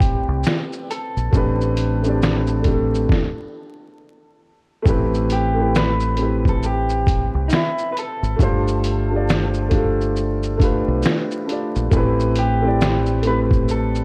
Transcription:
0.00 0.24 A1 medium
0.00 1.31 A3 medium
0.00 1.33 C4 medium
0.00 1.34 E4 medium
0.00 0.90 G4 medium
0.00 1.35 G4 medium
0.00 0.31 B4 medium
0.00 1.35 D5 medium
0.00 kick medium
0.00 closed hi-hat medium
0.00 shaker soft
0.28 0.43 C2 medium
0.44 finger snap medium
0.44 snare loud
0.44 shaker medium
0.73 shaker soft
0.91 3.95 A4 medium
0.91 closed hi-hat medium
0.91 shaker soft
1.17 1.31 A#1 medium
1.17 shaker soft
1.31 3.06 A1 loud
1.31 1.74 A3 medium
1.31 1.75 C4 medium
1.31 1.76 D4 medium
1.31 kick loud
1.31 shaker medium
1.36 1.77 G4 medium
1.36 1.77 B4 loud
1.61 shaker soft
1.77 closed hi-hat medium
1.77 shaker soft
2.02 2.45 A3 medium
2.02 2.46 C4 medium
2.02 2.46 D4 medium
2.02 shaker soft
2.07 2.47 G4 medium
2.07 2.48 D5 medium
2.22 finger snap medium
2.22 snare loud
2.22 shaker medium
2.47 shaker soft
2.62 3.23 A3 medium
2.62 3.24 C4 medium
2.62 3.24 D4 medium
2.62 kick medium
2.62 closed hi-hat medium
2.62 shaker soft
2.67 3.25 G4 medium
2.67 3.26 A4 medium
2.95 shaker soft
3.09 kick loud
3.09 snare medium
4.82 7.30 A1 loud
4.82 5.27 A3 loud
4.82 5.28 C4 medium
4.82 5.28 E4 medium
4.82 kick loud
4.82 shaker medium
4.88 5.29 G4 medium
4.88 5.30 B4 loud
5.14 shaker soft
5.30 5.72 G4 medium
5.30 closed hi-hat medium
5.30 shaker soft
5.54 5.97 A3 medium
5.54 5.98 C4 medium
5.54 5.99 E4 medium
5.59 5.99 G4 medium
5.59 6.00 B4 medium
5.75 6.48 B4 loud
5.75 finger snap medium
5.75 snare loud
5.75 shaker medium
6.00 shaker soft
6.16 7.34 A3 medium
6.16 7.35 C4 medium
6.16 7.36 E4 medium
6.16 closed hi-hat medium
6.16 shaker soft
6.21 7.36 G4 medium
6.21 7.37 B4 medium
6.45 6.63 A4 medium
6.45 kick medium
6.45 shaker soft
6.63 7.49 G4 medium
6.63 shaker medium
6.89 shaker soft
7.07 kick loud
7.07 closed hi-hat medium
7.07 shaker soft
7.35 7.49 C2 medium
7.48 7.52 D#4 medium
7.48 shaker medium
7.53 7.89 E4 medium
7.53 finger snap loud
7.53 snare loud
7.78 shaker soft
7.92 7.96 B4 medium
7.97 9.69 A4 loud
7.97 closed hi-hat medium
7.97 shaker soft
8.23 8.37 G#1 medium
8.23 shaker soft
8.36 10.83 G1 loud
8.36 8.80 A3 medium
8.36 8.81 D4 medium
8.36 8.81 F4 medium
8.36 kick loud
8.36 shaker medium
8.41 8.82 G4 loud
8.41 8.83 C5 loud
8.68 shaker soft
8.84 closed hi-hat medium
8.84 shaker soft
9.10 9.51 A3 medium
9.10 9.52 D4 medium
9.10 9.53 F4 medium
9.14 9.54 G4 medium
9.14 9.55 D5 medium
9.29 finger snap medium
9.29 snare loud
9.29 shaker medium
9.54 shaker soft
9.69 10.29 A3 medium
9.69 10.29 D4 medium
9.69 10.30 F4 medium
9.69 kick medium
9.69 closed hi-hat medium
9.69 shaker soft
9.73 10.31 G4 medium
9.73 10.32 A4 medium
10.01 shaker soft
10.16 shaker medium
10.43 shaker soft
10.57 11.17 A3 medium
10.57 11.18 D4 medium
10.57 11.19 F4 medium
10.57 kick medium
10.61 11.19 G4 medium
10.61 11.20 B4 medium
10.61 closed hi-hat medium
10.61 shaker soft
10.88 11.02 B1 medium
11.03 finger snap loud
11.03 snare loud
11.03 shaker medium
11.31 shaker soft
11.46 11.79 A3 medium
11.46 11.79 D4 medium
11.46 11.80 F4 medium
11.46 closed hi-hat medium
11.46 shaker soft
11.51 11.81 G4 medium
11.51 11.82 D5 medium
11.76 11.91 A#1 medium
11.76 shaker soft
11.90 14.04 A1 loud
11.90 12.33 A3 loud
11.90 12.34 C4 medium
11.90 12.35 E4 loud
11.90 kick loud
11.90 shaker medium
11.95 12.36 G4 medium
11.95 12.37 B4 loud
12.20 shaker soft
12.35 13.22 G4 medium
12.35 closed hi-hat medium
12.35 shaker soft
12.61 13.04 A3 medium
12.61 13.04 C4 medium
12.61 13.05 E4 medium
12.66 13.06 G4 medium
12.66 13.07 D5 medium
12.81 finger snap medium
12.81 snare loud
12.81 shaker medium
13.06 shaker soft
13.22 14.04 A3 medium
13.22 14.04 C4 medium
13.22 14.04 E4 medium
13.22 closed hi-hat medium
13.22 shaker soft
13.27 14.04 G4 medium
13.27 13.39 B4 loud
13.27 14.04 B4 medium
13.51 kick medium
13.51 shaker soft
13.69 14.04 A4 medium
13.69 shaker medium
13.95 shaker soft

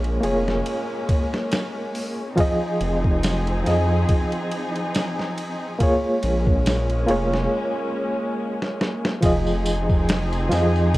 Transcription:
0.00 0.19 A#1 loud
0.00 2.34 G#3 medium
0.00 0.17 A#3 medium
0.00 2.34 A#3 medium
0.00 2.34 C#4 medium
0.00 0.18 F4 medium
0.00 0.19 G#4 medium
0.00 0.20 C#5 loud
0.04 ride soft
0.21 0.62 F1 medium
0.21 2.32 A#3 medium
0.21 2.33 F4 medium
0.21 2.33 G#4 medium
0.21 ride medium
0.26 2.34 C#5 medium
0.48 snare medium
0.66 ride medium
1.09 kick loud
1.09 ride medium
1.34 snare medium
1.52 snare loud
1.52 ride medium
1.52 tambourine medium
1.95 open hi-hat medium
2.36 3.61 F3 medium
2.36 5.77 F3 medium
2.36 5.77 C4 medium
2.36 5.77 D#4 medium
2.36 3.61 F4 medium
2.36 5.77 G#4 medium
2.36 3.62 G#4 medium
2.36 kick loud
2.36 ride medium
2.40 3.63 D#5 loud
2.81 3.63 F1 loud
2.81 ride medium
3.04 kick medium
3.23 snare loud
3.23 ride medium
3.23 tambourine medium
3.47 ride soft
3.64 4.05 F2 medium
3.64 5.75 F3 medium
3.64 5.75 F4 medium
3.64 5.76 G#4 medium
3.64 snare soft
3.64 ride medium
3.68 5.77 D#5 medium
4.09 kick loud
4.09 ride medium
4.32 ride soft
4.52 ride medium
4.76 ride soft
4.95 snare loud
4.95 ride medium
4.95 tambourine medium
5.19 snare soft
5.38 ride medium
5.79 9.20 G#3 medium
5.79 7.04 A#3 medium
5.79 9.20 A#3 medium
5.79 9.20 C#4 medium
5.79 7.04 F4 medium
5.79 7.05 G#4 medium
5.79 kick loud
5.79 ride medium
5.83 7.06 C#5 loud
6.23 7.06 A#1 loud
6.23 ride medium
6.47 kick loud
6.66 snare loud
6.66 ride medium
6.66 tambourine medium
6.90 ride soft
7.06 7.47 F1 medium
7.06 7.50 A#3 medium
7.06 7.51 F4 medium
7.06 7.52 G#4 medium
7.06 ride medium
7.11 7.53 C#5 loud
7.34 snare medium
8.62 snare medium
8.81 snare medium
9.05 snare medium
9.21 10.48 F1 loud
9.21 10.46 F3 medium
9.21 10.98 F3 medium
9.21 10.98 C4 medium
9.21 10.98 D#4 medium
9.21 10.47 F4 medium
9.21 10.47 G#4 medium
9.21 10.98 G#4 medium
9.21 kick loud
9.21 ride medium
9.21 tambourine medium
9.25 10.48 D#5 loud
9.47 tambourine soft
9.66 ride medium
9.66 tambourine loud
9.89 kick loud
9.89 tambourine soft
10.09 snare loud
10.09 ride medium
10.09 tambourine soft
10.33 ride soft
10.33 tambourine soft
10.49 10.96 F2 medium
10.49 10.98 F3 medium
10.49 10.98 F4 medium
10.49 10.98 G#4 medium
10.49 snare soft
10.49 ride medium
10.49 tambourine medium
10.54 10.98 D#5 loud
10.76 tambourine soft
10.94 10.98 C2 medium
10.94 kick loud
10.94 ride medium
10.94 tambourine soft

